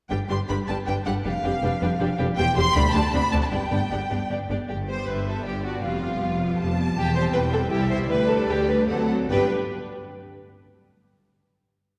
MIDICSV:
0, 0, Header, 1, 6, 480
1, 0, Start_track
1, 0, Key_signature, 1, "major"
1, 0, Tempo, 380469
1, 135, Time_signature, 3, 2, 24, 8
1, 10211, Tempo, 397878
1, 14910, End_track
2, 0, Start_track
2, 0, Title_t, "Violin section"
2, 0, Program_c, 0, 48
2, 128, Note_on_c, 0, 79, 70
2, 227, Note_off_c, 0, 79, 0
2, 373, Note_on_c, 0, 84, 83
2, 472, Note_off_c, 0, 84, 0
2, 611, Note_on_c, 0, 83, 70
2, 711, Note_off_c, 0, 83, 0
2, 849, Note_on_c, 0, 81, 76
2, 948, Note_off_c, 0, 81, 0
2, 1094, Note_on_c, 0, 79, 83
2, 1192, Note_off_c, 0, 79, 0
2, 1331, Note_on_c, 0, 78, 73
2, 1429, Note_off_c, 0, 78, 0
2, 1571, Note_on_c, 0, 77, 78
2, 2741, Note_off_c, 0, 77, 0
2, 2989, Note_on_c, 0, 79, 106
2, 3218, Note_off_c, 0, 79, 0
2, 3245, Note_on_c, 0, 84, 117
2, 3474, Note_on_c, 0, 83, 112
2, 3477, Note_off_c, 0, 84, 0
2, 3716, Note_off_c, 0, 83, 0
2, 3719, Note_on_c, 0, 81, 98
2, 3954, Note_on_c, 0, 83, 111
2, 3959, Note_off_c, 0, 81, 0
2, 4187, Note_on_c, 0, 81, 78
2, 4198, Note_off_c, 0, 83, 0
2, 4238, Note_off_c, 0, 81, 0
2, 4324, Note_on_c, 0, 81, 73
2, 4372, Note_off_c, 0, 81, 0
2, 4438, Note_on_c, 0, 79, 76
2, 5406, Note_off_c, 0, 79, 0
2, 6398, Note_on_c, 0, 76, 50
2, 6844, Note_off_c, 0, 76, 0
2, 6871, Note_on_c, 0, 74, 48
2, 7352, Note_on_c, 0, 77, 54
2, 7356, Note_off_c, 0, 74, 0
2, 8303, Note_on_c, 0, 81, 76
2, 8304, Note_off_c, 0, 77, 0
2, 9231, Note_off_c, 0, 81, 0
2, 9248, Note_on_c, 0, 79, 61
2, 9727, Note_off_c, 0, 79, 0
2, 9730, Note_on_c, 0, 76, 66
2, 10205, Note_off_c, 0, 76, 0
2, 10211, Note_on_c, 0, 74, 65
2, 11165, Note_off_c, 0, 74, 0
2, 11169, Note_on_c, 0, 78, 58
2, 11411, Note_off_c, 0, 78, 0
2, 11672, Note_on_c, 0, 79, 59
2, 11937, Note_off_c, 0, 79, 0
2, 14910, End_track
3, 0, Start_track
3, 0, Title_t, "Violin section"
3, 0, Program_c, 1, 48
3, 127, Note_on_c, 1, 71, 47
3, 131, Note_on_c, 1, 67, 57
3, 227, Note_off_c, 1, 71, 0
3, 230, Note_off_c, 1, 67, 0
3, 370, Note_on_c, 1, 67, 55
3, 376, Note_on_c, 1, 71, 53
3, 470, Note_off_c, 1, 67, 0
3, 474, Note_off_c, 1, 71, 0
3, 620, Note_on_c, 1, 67, 51
3, 624, Note_on_c, 1, 71, 56
3, 718, Note_off_c, 1, 67, 0
3, 721, Note_off_c, 1, 71, 0
3, 865, Note_on_c, 1, 67, 46
3, 865, Note_on_c, 1, 71, 47
3, 961, Note_off_c, 1, 71, 0
3, 962, Note_off_c, 1, 67, 0
3, 1089, Note_on_c, 1, 71, 51
3, 1090, Note_on_c, 1, 67, 53
3, 1188, Note_off_c, 1, 71, 0
3, 1189, Note_off_c, 1, 67, 0
3, 1334, Note_on_c, 1, 67, 55
3, 1342, Note_on_c, 1, 71, 57
3, 1431, Note_off_c, 1, 67, 0
3, 1438, Note_off_c, 1, 71, 0
3, 1568, Note_on_c, 1, 67, 53
3, 1577, Note_on_c, 1, 71, 57
3, 1666, Note_off_c, 1, 67, 0
3, 1674, Note_off_c, 1, 71, 0
3, 1819, Note_on_c, 1, 71, 58
3, 1822, Note_on_c, 1, 67, 63
3, 1915, Note_off_c, 1, 71, 0
3, 1917, Note_off_c, 1, 67, 0
3, 2051, Note_on_c, 1, 71, 63
3, 2055, Note_on_c, 1, 67, 61
3, 2148, Note_off_c, 1, 71, 0
3, 2151, Note_off_c, 1, 67, 0
3, 2290, Note_on_c, 1, 71, 56
3, 2301, Note_on_c, 1, 67, 54
3, 2386, Note_off_c, 1, 71, 0
3, 2395, Note_off_c, 1, 67, 0
3, 2522, Note_on_c, 1, 67, 65
3, 2523, Note_on_c, 1, 71, 58
3, 2619, Note_off_c, 1, 67, 0
3, 2620, Note_off_c, 1, 71, 0
3, 2756, Note_on_c, 1, 67, 71
3, 2761, Note_on_c, 1, 71, 64
3, 2853, Note_off_c, 1, 67, 0
3, 2858, Note_off_c, 1, 71, 0
3, 3010, Note_on_c, 1, 72, 70
3, 3012, Note_on_c, 1, 67, 72
3, 3105, Note_off_c, 1, 72, 0
3, 3106, Note_off_c, 1, 67, 0
3, 3234, Note_on_c, 1, 72, 76
3, 3237, Note_on_c, 1, 67, 79
3, 3331, Note_off_c, 1, 72, 0
3, 3334, Note_off_c, 1, 67, 0
3, 3470, Note_on_c, 1, 74, 74
3, 3476, Note_on_c, 1, 67, 82
3, 3568, Note_off_c, 1, 74, 0
3, 3572, Note_off_c, 1, 67, 0
3, 3727, Note_on_c, 1, 74, 70
3, 3732, Note_on_c, 1, 67, 57
3, 3821, Note_off_c, 1, 74, 0
3, 3826, Note_off_c, 1, 67, 0
3, 3968, Note_on_c, 1, 66, 62
3, 3970, Note_on_c, 1, 74, 65
3, 4063, Note_off_c, 1, 66, 0
3, 4064, Note_off_c, 1, 74, 0
3, 4198, Note_on_c, 1, 74, 65
3, 4203, Note_on_c, 1, 66, 56
3, 4297, Note_off_c, 1, 74, 0
3, 4300, Note_off_c, 1, 66, 0
3, 4436, Note_on_c, 1, 74, 53
3, 4438, Note_on_c, 1, 67, 60
3, 4536, Note_off_c, 1, 74, 0
3, 4538, Note_off_c, 1, 67, 0
3, 4675, Note_on_c, 1, 74, 54
3, 4676, Note_on_c, 1, 67, 60
3, 4776, Note_off_c, 1, 74, 0
3, 4777, Note_off_c, 1, 67, 0
3, 4925, Note_on_c, 1, 74, 54
3, 4931, Note_on_c, 1, 67, 56
3, 5026, Note_off_c, 1, 74, 0
3, 5031, Note_off_c, 1, 67, 0
3, 5172, Note_on_c, 1, 74, 42
3, 5174, Note_on_c, 1, 67, 46
3, 5273, Note_off_c, 1, 74, 0
3, 5274, Note_off_c, 1, 67, 0
3, 5425, Note_on_c, 1, 67, 44
3, 5427, Note_on_c, 1, 74, 44
3, 5525, Note_off_c, 1, 67, 0
3, 5526, Note_off_c, 1, 74, 0
3, 5673, Note_on_c, 1, 67, 48
3, 5675, Note_on_c, 1, 74, 45
3, 5772, Note_off_c, 1, 67, 0
3, 5774, Note_off_c, 1, 74, 0
3, 5908, Note_on_c, 1, 67, 65
3, 6008, Note_off_c, 1, 67, 0
3, 6161, Note_on_c, 1, 72, 70
3, 6392, Note_on_c, 1, 71, 62
3, 6398, Note_off_c, 1, 72, 0
3, 6636, Note_off_c, 1, 71, 0
3, 6644, Note_on_c, 1, 69, 60
3, 6877, Note_off_c, 1, 69, 0
3, 6877, Note_on_c, 1, 67, 56
3, 7114, Note_off_c, 1, 67, 0
3, 7125, Note_on_c, 1, 66, 56
3, 7359, Note_off_c, 1, 66, 0
3, 7361, Note_on_c, 1, 65, 64
3, 8520, Note_off_c, 1, 65, 0
3, 8794, Note_on_c, 1, 67, 82
3, 9007, Note_off_c, 1, 67, 0
3, 9023, Note_on_c, 1, 72, 85
3, 9116, Note_off_c, 1, 72, 0
3, 9254, Note_on_c, 1, 71, 87
3, 9349, Note_off_c, 1, 71, 0
3, 9494, Note_on_c, 1, 69, 72
3, 9589, Note_off_c, 1, 69, 0
3, 9725, Note_on_c, 1, 67, 74
3, 9963, Note_off_c, 1, 67, 0
3, 9974, Note_on_c, 1, 72, 81
3, 10071, Note_off_c, 1, 72, 0
3, 10222, Note_on_c, 1, 71, 88
3, 10449, Note_off_c, 1, 71, 0
3, 10451, Note_on_c, 1, 69, 86
3, 10686, Note_off_c, 1, 69, 0
3, 10702, Note_on_c, 1, 67, 80
3, 10932, Note_on_c, 1, 71, 72
3, 10933, Note_off_c, 1, 67, 0
3, 11163, Note_on_c, 1, 69, 64
3, 11171, Note_off_c, 1, 71, 0
3, 11649, Note_off_c, 1, 69, 0
3, 11662, Note_on_c, 1, 71, 75
3, 11932, Note_off_c, 1, 71, 0
3, 14910, End_track
4, 0, Start_track
4, 0, Title_t, "Viola section"
4, 0, Program_c, 2, 48
4, 130, Note_on_c, 2, 62, 51
4, 138, Note_on_c, 2, 55, 52
4, 229, Note_off_c, 2, 62, 0
4, 235, Note_off_c, 2, 55, 0
4, 374, Note_on_c, 2, 55, 43
4, 375, Note_on_c, 2, 62, 46
4, 473, Note_off_c, 2, 55, 0
4, 473, Note_off_c, 2, 62, 0
4, 619, Note_on_c, 2, 55, 51
4, 621, Note_on_c, 2, 62, 56
4, 717, Note_off_c, 2, 55, 0
4, 718, Note_off_c, 2, 62, 0
4, 865, Note_on_c, 2, 62, 49
4, 866, Note_on_c, 2, 55, 48
4, 962, Note_off_c, 2, 55, 0
4, 962, Note_off_c, 2, 62, 0
4, 1106, Note_on_c, 2, 55, 50
4, 1107, Note_on_c, 2, 62, 52
4, 1201, Note_off_c, 2, 55, 0
4, 1203, Note_off_c, 2, 62, 0
4, 1334, Note_on_c, 2, 62, 52
4, 1336, Note_on_c, 2, 55, 46
4, 1431, Note_off_c, 2, 62, 0
4, 1433, Note_off_c, 2, 55, 0
4, 1572, Note_on_c, 2, 55, 56
4, 1573, Note_on_c, 2, 62, 53
4, 1669, Note_off_c, 2, 55, 0
4, 1670, Note_off_c, 2, 62, 0
4, 1817, Note_on_c, 2, 55, 48
4, 1819, Note_on_c, 2, 62, 50
4, 1913, Note_off_c, 2, 55, 0
4, 1914, Note_off_c, 2, 62, 0
4, 2052, Note_on_c, 2, 62, 71
4, 2055, Note_on_c, 2, 55, 60
4, 2149, Note_off_c, 2, 62, 0
4, 2151, Note_off_c, 2, 55, 0
4, 2283, Note_on_c, 2, 55, 58
4, 2285, Note_on_c, 2, 62, 54
4, 2381, Note_off_c, 2, 55, 0
4, 2382, Note_off_c, 2, 62, 0
4, 2525, Note_on_c, 2, 62, 68
4, 2529, Note_on_c, 2, 55, 69
4, 2621, Note_off_c, 2, 62, 0
4, 2625, Note_off_c, 2, 55, 0
4, 2756, Note_on_c, 2, 55, 60
4, 2758, Note_on_c, 2, 62, 66
4, 2854, Note_off_c, 2, 55, 0
4, 2855, Note_off_c, 2, 62, 0
4, 2994, Note_on_c, 2, 67, 62
4, 2997, Note_on_c, 2, 55, 61
4, 3091, Note_off_c, 2, 67, 0
4, 3094, Note_off_c, 2, 55, 0
4, 3239, Note_on_c, 2, 67, 57
4, 3242, Note_on_c, 2, 55, 63
4, 3335, Note_off_c, 2, 67, 0
4, 3337, Note_off_c, 2, 55, 0
4, 3472, Note_on_c, 2, 62, 69
4, 3474, Note_on_c, 2, 55, 76
4, 3569, Note_off_c, 2, 62, 0
4, 3570, Note_off_c, 2, 55, 0
4, 3707, Note_on_c, 2, 55, 63
4, 3708, Note_on_c, 2, 62, 68
4, 3805, Note_off_c, 2, 55, 0
4, 3806, Note_off_c, 2, 62, 0
4, 3950, Note_on_c, 2, 60, 66
4, 3952, Note_on_c, 2, 62, 67
4, 4048, Note_off_c, 2, 60, 0
4, 4050, Note_off_c, 2, 62, 0
4, 4196, Note_on_c, 2, 60, 56
4, 4200, Note_on_c, 2, 62, 57
4, 4295, Note_off_c, 2, 60, 0
4, 4298, Note_off_c, 2, 62, 0
4, 4432, Note_on_c, 2, 62, 54
4, 4434, Note_on_c, 2, 59, 50
4, 4533, Note_off_c, 2, 62, 0
4, 4535, Note_off_c, 2, 59, 0
4, 4681, Note_on_c, 2, 62, 44
4, 4682, Note_on_c, 2, 59, 42
4, 4782, Note_off_c, 2, 59, 0
4, 4782, Note_off_c, 2, 62, 0
4, 4919, Note_on_c, 2, 59, 56
4, 4919, Note_on_c, 2, 62, 51
4, 5020, Note_off_c, 2, 59, 0
4, 5020, Note_off_c, 2, 62, 0
4, 5173, Note_on_c, 2, 62, 42
4, 5175, Note_on_c, 2, 59, 45
4, 5273, Note_off_c, 2, 62, 0
4, 5275, Note_off_c, 2, 59, 0
4, 5418, Note_on_c, 2, 62, 53
4, 5419, Note_on_c, 2, 59, 52
4, 5519, Note_off_c, 2, 62, 0
4, 5520, Note_off_c, 2, 59, 0
4, 5669, Note_on_c, 2, 59, 46
4, 5671, Note_on_c, 2, 62, 46
4, 5768, Note_off_c, 2, 59, 0
4, 5771, Note_off_c, 2, 62, 0
4, 6152, Note_on_c, 2, 59, 33
4, 6153, Note_on_c, 2, 55, 40
4, 6614, Note_off_c, 2, 59, 0
4, 6615, Note_off_c, 2, 55, 0
4, 6629, Note_on_c, 2, 59, 35
4, 6630, Note_on_c, 2, 55, 39
4, 7101, Note_off_c, 2, 59, 0
4, 7105, Note_off_c, 2, 55, 0
4, 7116, Note_on_c, 2, 59, 41
4, 7118, Note_on_c, 2, 55, 43
4, 7340, Note_off_c, 2, 59, 0
4, 7342, Note_off_c, 2, 55, 0
4, 7356, Note_on_c, 2, 59, 36
4, 7357, Note_on_c, 2, 55, 43
4, 7583, Note_off_c, 2, 59, 0
4, 7585, Note_off_c, 2, 55, 0
4, 7598, Note_on_c, 2, 59, 44
4, 7600, Note_on_c, 2, 55, 39
4, 8053, Note_off_c, 2, 59, 0
4, 8054, Note_off_c, 2, 55, 0
4, 8068, Note_on_c, 2, 59, 41
4, 8069, Note_on_c, 2, 55, 43
4, 8525, Note_off_c, 2, 55, 0
4, 8525, Note_off_c, 2, 59, 0
4, 8540, Note_on_c, 2, 55, 47
4, 8540, Note_on_c, 2, 59, 45
4, 8773, Note_off_c, 2, 55, 0
4, 8773, Note_off_c, 2, 59, 0
4, 9003, Note_on_c, 2, 55, 47
4, 9008, Note_on_c, 2, 60, 48
4, 9464, Note_off_c, 2, 55, 0
4, 9468, Note_off_c, 2, 60, 0
4, 9479, Note_on_c, 2, 55, 46
4, 9483, Note_on_c, 2, 60, 52
4, 9705, Note_off_c, 2, 55, 0
4, 9717, Note_on_c, 2, 64, 57
4, 9720, Note_on_c, 2, 55, 59
4, 9721, Note_off_c, 2, 60, 0
4, 9954, Note_off_c, 2, 64, 0
4, 9955, Note_off_c, 2, 55, 0
4, 9969, Note_on_c, 2, 64, 54
4, 9970, Note_on_c, 2, 55, 48
4, 10209, Note_off_c, 2, 55, 0
4, 10209, Note_off_c, 2, 64, 0
4, 10448, Note_on_c, 2, 55, 53
4, 10449, Note_on_c, 2, 62, 50
4, 10914, Note_off_c, 2, 55, 0
4, 10915, Note_off_c, 2, 62, 0
4, 10929, Note_on_c, 2, 55, 44
4, 10931, Note_on_c, 2, 62, 49
4, 11164, Note_off_c, 2, 55, 0
4, 11165, Note_off_c, 2, 62, 0
4, 11173, Note_on_c, 2, 54, 50
4, 11175, Note_on_c, 2, 60, 49
4, 11404, Note_off_c, 2, 54, 0
4, 11405, Note_off_c, 2, 60, 0
4, 11419, Note_on_c, 2, 54, 41
4, 11420, Note_on_c, 2, 60, 43
4, 11658, Note_off_c, 2, 54, 0
4, 11658, Note_off_c, 2, 60, 0
4, 11661, Note_on_c, 2, 62, 57
4, 11662, Note_on_c, 2, 67, 57
4, 11931, Note_off_c, 2, 62, 0
4, 11932, Note_off_c, 2, 67, 0
4, 14910, End_track
5, 0, Start_track
5, 0, Title_t, "Cello section"
5, 0, Program_c, 3, 48
5, 132, Note_on_c, 3, 43, 55
5, 231, Note_off_c, 3, 43, 0
5, 377, Note_on_c, 3, 43, 61
5, 475, Note_off_c, 3, 43, 0
5, 620, Note_on_c, 3, 43, 60
5, 718, Note_off_c, 3, 43, 0
5, 859, Note_on_c, 3, 43, 52
5, 957, Note_off_c, 3, 43, 0
5, 1098, Note_on_c, 3, 43, 63
5, 1195, Note_off_c, 3, 43, 0
5, 1336, Note_on_c, 3, 43, 52
5, 1433, Note_off_c, 3, 43, 0
5, 1577, Note_on_c, 3, 41, 62
5, 1673, Note_off_c, 3, 41, 0
5, 1812, Note_on_c, 3, 41, 69
5, 1909, Note_off_c, 3, 41, 0
5, 2052, Note_on_c, 3, 41, 68
5, 2148, Note_off_c, 3, 41, 0
5, 2286, Note_on_c, 3, 41, 69
5, 2383, Note_off_c, 3, 41, 0
5, 2526, Note_on_c, 3, 41, 75
5, 2622, Note_off_c, 3, 41, 0
5, 2766, Note_on_c, 3, 41, 77
5, 2862, Note_off_c, 3, 41, 0
5, 3001, Note_on_c, 3, 40, 83
5, 3097, Note_off_c, 3, 40, 0
5, 3236, Note_on_c, 3, 40, 80
5, 3333, Note_off_c, 3, 40, 0
5, 3475, Note_on_c, 3, 38, 89
5, 3572, Note_off_c, 3, 38, 0
5, 3713, Note_on_c, 3, 38, 73
5, 3810, Note_off_c, 3, 38, 0
5, 3954, Note_on_c, 3, 38, 75
5, 4052, Note_off_c, 3, 38, 0
5, 4195, Note_on_c, 3, 38, 71
5, 4294, Note_off_c, 3, 38, 0
5, 4441, Note_on_c, 3, 43, 67
5, 4540, Note_off_c, 3, 43, 0
5, 4684, Note_on_c, 3, 43, 54
5, 4784, Note_off_c, 3, 43, 0
5, 4940, Note_on_c, 3, 43, 54
5, 5038, Note_off_c, 3, 43, 0
5, 5190, Note_on_c, 3, 43, 52
5, 5287, Note_off_c, 3, 43, 0
5, 5435, Note_on_c, 3, 43, 48
5, 5533, Note_off_c, 3, 43, 0
5, 5671, Note_on_c, 3, 43, 51
5, 5770, Note_off_c, 3, 43, 0
5, 5925, Note_on_c, 3, 43, 46
5, 6349, Note_off_c, 3, 43, 0
5, 6406, Note_on_c, 3, 43, 48
5, 6826, Note_off_c, 3, 43, 0
5, 6887, Note_on_c, 3, 43, 51
5, 7308, Note_off_c, 3, 43, 0
5, 7366, Note_on_c, 3, 41, 50
5, 7784, Note_off_c, 3, 41, 0
5, 7843, Note_on_c, 3, 41, 56
5, 8256, Note_off_c, 3, 41, 0
5, 8310, Note_on_c, 3, 41, 61
5, 8724, Note_off_c, 3, 41, 0
5, 8779, Note_on_c, 3, 40, 58
5, 9196, Note_off_c, 3, 40, 0
5, 9255, Note_on_c, 3, 40, 64
5, 9674, Note_off_c, 3, 40, 0
5, 9731, Note_on_c, 3, 36, 65
5, 10157, Note_off_c, 3, 36, 0
5, 10214, Note_on_c, 3, 38, 63
5, 10630, Note_off_c, 3, 38, 0
5, 10687, Note_on_c, 3, 38, 65
5, 11110, Note_off_c, 3, 38, 0
5, 11167, Note_on_c, 3, 38, 56
5, 11603, Note_off_c, 3, 38, 0
5, 11672, Note_on_c, 3, 43, 70
5, 11937, Note_off_c, 3, 43, 0
5, 14910, End_track
6, 0, Start_track
6, 0, Title_t, "Double bass section"
6, 0, Program_c, 4, 48
6, 136, Note_on_c, 4, 31, 59
6, 234, Note_off_c, 4, 31, 0
6, 379, Note_on_c, 4, 31, 63
6, 477, Note_off_c, 4, 31, 0
6, 626, Note_on_c, 4, 31, 55
6, 722, Note_off_c, 4, 31, 0
6, 869, Note_on_c, 4, 31, 53
6, 965, Note_off_c, 4, 31, 0
6, 1109, Note_on_c, 4, 31, 52
6, 1204, Note_off_c, 4, 31, 0
6, 1348, Note_on_c, 4, 31, 57
6, 1442, Note_off_c, 4, 31, 0
6, 1577, Note_on_c, 4, 29, 63
6, 1674, Note_off_c, 4, 29, 0
6, 1810, Note_on_c, 4, 29, 74
6, 1907, Note_off_c, 4, 29, 0
6, 2048, Note_on_c, 4, 29, 64
6, 2146, Note_off_c, 4, 29, 0
6, 2291, Note_on_c, 4, 29, 64
6, 2387, Note_off_c, 4, 29, 0
6, 2523, Note_on_c, 4, 29, 68
6, 2620, Note_off_c, 4, 29, 0
6, 2765, Note_on_c, 4, 29, 78
6, 2861, Note_off_c, 4, 29, 0
6, 2997, Note_on_c, 4, 28, 83
6, 3094, Note_off_c, 4, 28, 0
6, 3241, Note_on_c, 4, 28, 87
6, 3336, Note_off_c, 4, 28, 0
6, 3478, Note_on_c, 4, 38, 82
6, 3574, Note_off_c, 4, 38, 0
6, 3718, Note_on_c, 4, 38, 76
6, 3814, Note_off_c, 4, 38, 0
6, 3958, Note_on_c, 4, 38, 70
6, 4055, Note_off_c, 4, 38, 0
6, 4200, Note_on_c, 4, 38, 64
6, 4298, Note_off_c, 4, 38, 0
6, 4439, Note_on_c, 4, 31, 67
6, 4539, Note_off_c, 4, 31, 0
6, 4688, Note_on_c, 4, 31, 62
6, 4788, Note_off_c, 4, 31, 0
6, 4942, Note_on_c, 4, 31, 57
6, 5040, Note_off_c, 4, 31, 0
6, 5188, Note_on_c, 4, 31, 49
6, 5285, Note_off_c, 4, 31, 0
6, 5417, Note_on_c, 4, 31, 49
6, 5518, Note_off_c, 4, 31, 0
6, 5673, Note_on_c, 4, 31, 45
6, 5772, Note_off_c, 4, 31, 0
6, 5915, Note_on_c, 4, 31, 48
6, 6344, Note_off_c, 4, 31, 0
6, 6398, Note_on_c, 4, 31, 51
6, 6822, Note_off_c, 4, 31, 0
6, 6875, Note_on_c, 4, 31, 53
6, 7302, Note_off_c, 4, 31, 0
6, 7353, Note_on_c, 4, 29, 58
6, 7778, Note_off_c, 4, 29, 0
6, 7828, Note_on_c, 4, 29, 51
6, 8248, Note_off_c, 4, 29, 0
6, 8305, Note_on_c, 4, 29, 52
6, 8722, Note_off_c, 4, 29, 0
6, 8780, Note_on_c, 4, 28, 60
6, 9197, Note_off_c, 4, 28, 0
6, 9246, Note_on_c, 4, 28, 66
6, 9670, Note_off_c, 4, 28, 0
6, 9730, Note_on_c, 4, 36, 61
6, 10157, Note_off_c, 4, 36, 0
6, 10207, Note_on_c, 4, 38, 60
6, 10626, Note_off_c, 4, 38, 0
6, 10688, Note_on_c, 4, 38, 62
6, 11111, Note_off_c, 4, 38, 0
6, 11159, Note_on_c, 4, 38, 56
6, 11599, Note_off_c, 4, 38, 0
6, 11657, Note_on_c, 4, 31, 62
6, 11929, Note_off_c, 4, 31, 0
6, 14910, End_track
0, 0, End_of_file